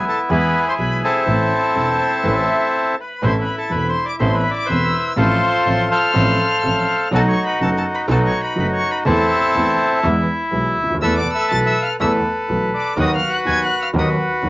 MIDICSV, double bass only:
0, 0, Header, 1, 2, 480
1, 0, Start_track
1, 0, Key_signature, 0, "minor"
1, 0, Tempo, 487013
1, 1260, Time_signature, 4, 2, 24, 8
1, 14285, End_track
2, 0, Start_track
2, 0, Title_t, "Double bass"
2, 0, Program_c, 0, 43
2, 294, Note_on_c, 0, 40, 97
2, 499, Note_off_c, 0, 40, 0
2, 778, Note_on_c, 0, 35, 50
2, 981, Note_off_c, 0, 35, 0
2, 1254, Note_on_c, 0, 33, 83
2, 1458, Note_off_c, 0, 33, 0
2, 1741, Note_on_c, 0, 28, 56
2, 1943, Note_off_c, 0, 28, 0
2, 2218, Note_on_c, 0, 33, 86
2, 2422, Note_off_c, 0, 33, 0
2, 3182, Note_on_c, 0, 33, 93
2, 3388, Note_off_c, 0, 33, 0
2, 3673, Note_on_c, 0, 28, 59
2, 3874, Note_off_c, 0, 28, 0
2, 4145, Note_on_c, 0, 33, 105
2, 4350, Note_off_c, 0, 33, 0
2, 4624, Note_on_c, 0, 28, 61
2, 4830, Note_off_c, 0, 28, 0
2, 5101, Note_on_c, 0, 33, 106
2, 5308, Note_off_c, 0, 33, 0
2, 5590, Note_on_c, 0, 33, 62
2, 5792, Note_off_c, 0, 33, 0
2, 6061, Note_on_c, 0, 33, 101
2, 6266, Note_off_c, 0, 33, 0
2, 6546, Note_on_c, 0, 33, 62
2, 6748, Note_off_c, 0, 33, 0
2, 7021, Note_on_c, 0, 35, 100
2, 7224, Note_off_c, 0, 35, 0
2, 7498, Note_on_c, 0, 30, 71
2, 7702, Note_off_c, 0, 30, 0
2, 7973, Note_on_c, 0, 35, 110
2, 8178, Note_off_c, 0, 35, 0
2, 8445, Note_on_c, 0, 30, 62
2, 8654, Note_off_c, 0, 30, 0
2, 8926, Note_on_c, 0, 40, 102
2, 9134, Note_off_c, 0, 40, 0
2, 9413, Note_on_c, 0, 40, 69
2, 9617, Note_off_c, 0, 40, 0
2, 9897, Note_on_c, 0, 40, 102
2, 10099, Note_off_c, 0, 40, 0
2, 10376, Note_on_c, 0, 35, 60
2, 10580, Note_off_c, 0, 35, 0
2, 10624, Note_on_c, 0, 38, 61
2, 10863, Note_off_c, 0, 38, 0
2, 10868, Note_on_c, 0, 40, 87
2, 11067, Note_off_c, 0, 40, 0
2, 11351, Note_on_c, 0, 35, 63
2, 11549, Note_off_c, 0, 35, 0
2, 11831, Note_on_c, 0, 40, 98
2, 12030, Note_off_c, 0, 40, 0
2, 12306, Note_on_c, 0, 35, 57
2, 12507, Note_off_c, 0, 35, 0
2, 12785, Note_on_c, 0, 39, 104
2, 12986, Note_off_c, 0, 39, 0
2, 13274, Note_on_c, 0, 39, 62
2, 13470, Note_off_c, 0, 39, 0
2, 13739, Note_on_c, 0, 39, 106
2, 13942, Note_off_c, 0, 39, 0
2, 14220, Note_on_c, 0, 39, 64
2, 14285, Note_off_c, 0, 39, 0
2, 14285, End_track
0, 0, End_of_file